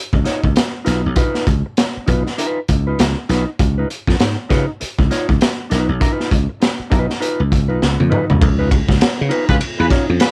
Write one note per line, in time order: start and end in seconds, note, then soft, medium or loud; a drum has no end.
0.13 0.23 C#2 medium
0.13 muted clean electric guitar stroke soft
0.13 kick medium
0.24 0.45 D#4 medium
0.24 0.42 F4 medium
0.24 0.43 C#5 medium
0.24 snare soft
0.24 closed hi-hat medium
0.43 0.54 C#2 medium
0.43 muted clean electric guitar stroke soft
0.43 kick medium
0.54 muted clean electric guitar stroke soft
0.54 snare loud
0.54 closed hi-hat medium
0.74 muted clean electric guitar stroke soft
0.85 1.01 B1 medium
0.85 1.05 D#4 medium
0.85 1.03 F4 medium
0.85 1.03 B4 medium
0.85 snare soft
0.85 closed hi-hat medium
1.04 1.15 B1 medium
1.04 muted clean electric guitar stroke soft
1.15 1.45 D#4 medium
1.15 1.45 F4 medium
1.15 1.45 B4 medium
1.15 kick loud
1.15 closed hi-hat medium
1.35 snare soft
1.47 1.62 C#2 medium
1.47 kick medium
1.47 closed hi-hat medium
1.66 muted clean electric guitar stroke soft
1.77 muted clean electric guitar stroke soft
1.77 snare loud
1.77 closed hi-hat medium
1.96 muted clean electric guitar stroke soft
1.96 muted slap bass stroke soft
2.06 2.23 B1 medium
2.06 2.27 D#4 medium
2.06 2.26 F4 medium
2.06 2.24 B4 medium
2.06 kick medium
2.06 closed hi-hat medium
2.26 muted clean electric guitar stroke soft
2.26 snare soft
2.38 2.58 D#4 medium
2.38 2.59 F4 medium
2.38 2.59 B4 loud
2.38 closed hi-hat medium
2.68 2.93 C#2 medium
2.68 muted clean electric guitar stroke soft
2.68 kick medium
2.68 closed hi-hat medium
2.87 2.99 D#4 medium
2.87 2.98 F4 medium
2.87 2.98 B4 medium
2.99 3.14 C#2 loud
2.99 snare loud
2.99 closed hi-hat loud
3.18 muted clean electric guitar stroke soft
3.29 3.44 B1 medium
3.29 3.49 D#4 medium
3.29 3.47 F4 medium
3.29 3.46 B4 medium
3.29 snare soft
3.29 closed hi-hat medium
3.47 muted clean electric guitar stroke soft
3.59 3.84 C#2 loud
3.59 muted clean electric guitar stroke soft
3.59 kick medium
3.59 closed hi-hat medium
3.78 3.89 D#4 medium
3.78 3.90 F4 medium
3.78 3.90 B4 medium
3.90 muted clean electric guitar stroke soft
3.90 closed hi-hat medium
4.07 4.18 F2 medium
4.07 muted clean electric guitar stroke soft
4.07 kick medium
4.07 snare soft
4.19 4.35 G#2 medium
4.19 muted clean electric guitar stroke soft
4.19 snare loud
4.19 closed hi-hat medium
4.37 muted clean electric guitar stroke soft
4.49 4.65 C#3 medium
4.49 4.70 D#4 medium
4.49 4.68 F4 medium
4.49 4.67 B4 medium
4.49 kick medium
4.49 snare soft
4.49 closed hi-hat medium
4.68 muted clean electric guitar stroke soft
4.80 muted clean electric guitar stroke soft
4.80 muted slap bass stroke soft
4.80 closed hi-hat medium
4.98 5.09 C#2 medium
4.98 muted clean electric guitar stroke soft
4.98 kick medium
5.10 5.30 D#4 medium
5.10 5.29 F4 medium
5.10 5.29 C#5 medium
5.10 snare soft
5.10 closed hi-hat medium
5.29 5.38 C#2 medium
5.29 muted clean electric guitar stroke soft
5.29 kick medium
5.41 muted clean electric guitar stroke soft
5.41 snare loud
5.41 closed hi-hat medium
5.59 muted clean electric guitar stroke soft
5.70 5.86 B1 medium
5.70 5.91 D#4 medium
5.70 5.89 F4 medium
5.70 5.89 B4 medium
5.70 snare soft
5.70 closed hi-hat medium
5.89 5.99 B1 medium
5.89 muted clean electric guitar stroke soft
6.00 6.12 D4 medium
6.00 6.13 E4 medium
6.00 6.13 A#4 medium
6.00 kick medium
6.00 closed hi-hat medium
6.12 6.29 D#4 medium
6.12 6.29 F4 medium
6.12 6.29 B4 medium
6.20 snare soft
6.31 6.46 C#2 medium
6.31 kick medium
6.31 closed hi-hat medium
6.49 muted clean electric guitar stroke soft
6.60 muted clean electric guitar stroke soft
6.60 snare loud
6.60 closed hi-hat medium
6.79 muted clean electric guitar stroke soft
6.79 muted slap bass stroke soft
6.90 7.06 B1 medium
6.90 7.11 D#4 medium
6.90 7.09 F4 medium
6.90 7.08 B4 medium
6.90 kick medium
6.90 closed hi-hat medium
7.09 muted clean electric guitar stroke soft
7.09 snare soft
7.20 7.40 D#4 medium
7.20 7.41 F4 medium
7.20 7.41 B4 medium
7.20 closed hi-hat medium
7.40 7.49 C#2 medium
7.50 7.69 C#2 medium
7.50 muted clean electric guitar stroke soft
7.50 kick medium
7.50 closed hi-hat medium
7.68 7.79 B1 medium
7.68 7.80 D#4 medium
7.68 7.80 F4 medium
7.68 7.80 B4 medium
7.82 7.96 C#2 loud
7.82 snare medium
7.98 8.09 F2 medium
7.98 muted clean electric guitar stroke soft
7.98 high tom medium
8.10 8.30 D#4 medium
8.10 8.28 F4 medium
8.10 8.26 B4 medium
8.10 mid tom medium
8.28 8.40 C#2 medium
8.28 muted clean electric guitar stroke soft
8.28 floor tom medium
8.41 8.80 C#2 loud
8.41 8.56 F3 medium
8.41 muted clean electric guitar stroke soft
8.41 kick loud
8.41 ride bell medium
8.59 8.70 D#4 medium
8.59 8.70 F4 medium
8.59 8.71 B4 medium
8.71 8.86 G#3 medium
8.71 kick medium
8.71 ride bell medium
8.88 8.98 C#2 medium
8.88 muted clean electric guitar stroke soft
8.88 kick medium
8.88 snare soft
9.00 muted clean electric guitar stroke soft
9.00 muted slap bass stroke soft
9.00 snare loud
9.00 ride bell medium
9.18 9.30 C#3 medium
9.18 9.29 B3 medium
9.18 muted clean electric guitar stroke medium
9.29 9.45 B3 medium
9.29 9.49 D#4 medium
9.29 9.47 F4 loud
9.29 9.46 B4 loud
9.29 ride bell medium
9.47 9.58 C#2 medium
9.47 9.56 F4 loud
9.47 9.56 G#4 medium
9.47 9.56 B4 loud
9.47 muted clean electric guitar stroke medium
9.47 kick loud
9.60 muted clean electric guitar stroke soft
9.60 ride bell medium
9.77 9.89 E2 loud
9.77 9.87 F4 medium
9.77 9.87 G#4 medium
9.77 9.86 B4 medium
9.77 muted clean electric guitar stroke medium
9.90 10.05 C#4 medium
9.90 10.10 D#4 medium
9.90 10.08 F4 medium
9.90 10.09 C#5 medium
9.90 kick medium
9.90 snare soft
9.90 ride bell medium
10.07 10.19 F2 medium
10.07 10.18 C#4 medium
10.07 muted clean electric guitar stroke medium
10.20 10.31 F4 medium
10.20 10.31 G#4 medium
10.20 10.31 B4 loud
10.20 muted clean electric guitar stroke soft
10.20 snare loud
10.20 ride bell medium